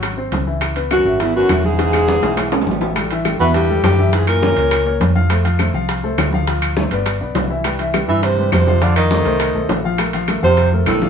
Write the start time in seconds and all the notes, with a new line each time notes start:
Already playing: G#1 F#3 F#4
0.03 high bongo, high conga, high timbale, claves
0.17 C4 C5, high bongo, high conga
0.32 C#2, high bongo, low bongo, high conga, high timbale
0.47 E3 E4, high bongo
0.61 high bongo, high conga, high timbale, claves
0.76 B3 B4, high conga, high timbale
0.91 F#2 F#4, high bongo, high conga, high timbale, claves
1.05 G#1 E4 E5, high bongo, high conga
1.20 E2 E4, high bongo, high conga, high timbale
1.35 F#2 B3 F#4 B4, high bongo, high conga
1.49 E1 E4 E5, high bongo, low bongo, high conga, high timbale, claves
1.64 G#2 G#4, high bongo, high conga
1.79 E3 E4, high bongo, high conga, high timbale
1.93 high bongo, high conga, high timbale, claves
2.08 B3 B4, high bongo, high conga
2.23 B1 E3 E4, low bongo, high conga, high timbale
2.37 low bongo, high conga, high timbale, claves
2.52 G#3 G#4, low bongo, high conga, high timbale
2.62 low timbale
2.67 A1, low bongo, high conga
2.71 low timbale
2.81 E3 E4, low bongo, low timbale
2.96 G3 G4 A4, high bongo, high conga, high timbale, claves
3.11 E3 E4 E5, high conga, high timbale
3.25 G3 G4 A4, high bongo, high conga, high timbale, claves
3.40 E2 B2 E3 E4 B4 E5, high bongo, high conga
3.54 G2 G4, high bongo, high conga, high timbale
3.69 G3 G4 A4, high bongo, high conga
3.83 F#2 G2 G4, high bongo, low bongo, high conga, high timbale, low timbale, claves
3.99 E3 E4 E5, high bongo, high conga
4.13 G#2 E3 E4 G#4 E5, high bongo, high conga, high timbale
4.27 A#2 A#4, high conga, high timbale, claves
4.42 A#3 A#4 C#5, high bongo, high conga
4.57 C#2 A#3 A#4 C#5, high bongo, high conga, high timbale
4.71 high bongo, high conga, high timbale, claves
4.86 A#3 A#4 C#5, high bongo, high conga
5.00 F2, high bongo, low bongo, high conga, high timbale
5.15 F3 F4 F5, high bongo, high conga
5.30 A3 A4 C5, high bongo, high conga, high timbale, claves
5.44 F3 F4 F5, high conga, high timbale
5.59 A3 A4 C5, high bongo, high conga, high timbale, claves
5.74 C2 F3 F4 F5, high bongo, high conga
5.89 high bongo, high conga, high timbale
6.03 A3 A4 C5, high bongo, high conga
6.18 D2, high bongo, low bongo, high conga, high timbale, low timbale, claves
6.33 F3 F4 F5, high bongo, high conga
6.47 F3 F4 F5, high bongo, high conga, high timbale
6.62 high conga, high timbale, claves
6.77 A3 A4 C5, high bongo, high conga
6.91 G1 B3 B4 D5, high bongo, high conga, high timbale
7.06 high bongo, high conga, high timbale, claves
7.21 B1 B3 B4 D5, high bongo, high conga
7.35 C2, high bongo, low bongo, high conga, high timbale, low timbale
7.50 E3 E4 E5, high bongo
7.64 G3 G4 B4, high bongo, high conga, high timbale, claves
7.79 E3 E4 E5, high conga, high timbale
7.94 G3 G4 B4, high bongo, high conga, high timbale, claves
8.08 G2 E3 E4 E5, high bongo, high conga
8.23 C3 C5, high bongo, high conga, high timbale
8.38 G3 G4 B4, high bongo, high conga
8.52 F2 C3 C5, high bongo, low bongo, high conga, high timbale, low timbale, claves
8.67 F3 F4 F5, high bongo, high conga
8.81 D3 F3 F4 D5 F5, high bongo, high timbale
8.96 D#3 D#5, high conga, high timbale, claves
9.11 A3 A4 C5, high bongo, high conga
9.25 C2 A3 A4 C5, high bongo, high conga, high timbale
9.40 high bongo, high conga, high timbale, claves
9.54 B1 A3 A4 C5, high bongo, high conga
9.69 A#1, high bongo, low bongo, high conga, high timbale, low timbale
9.84 F3 F4 F5, high bongo
9.98 A3 A4 A#4, high bongo, high conga, high timbale, claves
10.13 F3 F4 F5, high conga, high timbale
10.28 A3 A4 A#4, high bongo, high conga, high timbale, claves
10.42 F2 C3 F3 F4 C5 F5, high bongo, high conga
10.57 high bongo, high conga, high timbale
10.72 A3 A4 A#4, high bongo, high conga
10.86 B1 A2 A4, high bongo, low bongo, high conga, high timbale, claves
11.02 F3 F4 F5, high bongo, high conga